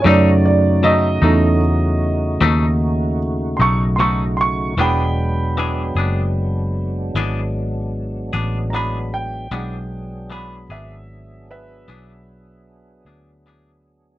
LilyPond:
<<
  \new Staff \with { instrumentName = "Upright piano" } { \time 12/8 \key e \mixolydian \tempo 4. = 51 << { <cis'' d''>8 d''8 dis''2. r8 <c''' cis'''>16 r16 <c''' cis'''>16 r16 <c''' cis'''>8 | <g'' b''>2. r2 <ais'' b''>8 g''8~ | g''4 b''8 e''4 <b' e''>2. r8 | } \\ { <a dis' cis''>4. <a cis' dis'>8 r1 | <gis d' fis''>4. r1 r8 | <gis d' fis''>4. r1 r8 | } >> }
  \new Staff \with { instrumentName = "Clean electric guitar" } { \time 12/8 \key e \mixolydian <b, fis a dis'>8 r8 <b, fis a dis'>8 <fis a dis'>8 r4 <b, fis a dis'>8 r4 <fis a dis'>8 <b, fis a dis'>8 r8 | <e b d' gis'>8 r8 <e b d' gis'>8 <b d' gis'>8 r4 <e b d' gis'>8 r4 <b d' gis'>8 <e b d' gis'>8 r8 | <e b d' gis'>8 r8 <e b d' gis'>8 <b d' gis'>8 r4 <e b d' gis'>8 r4 <b d' gis'>8 <e b d' gis'>8 r8 | }
  \new Staff \with { instrumentName = "Tonewheel organ" } { \time 12/8 \key e \mixolydian <cis a dis' fis'>1. | <fis gis b d'>1. | <fis b d' gis'>1. | }
  \new Staff \with { instrumentName = "Fingered electric bass" } { \clef bass \time 12/8 \key e \mixolydian fis,4. e,4. dis,4. b,,4. | e,,4. fis,,4. gis,,4. a,,4. | b,,4. gis,,4. b,,4. d,4. | }
>>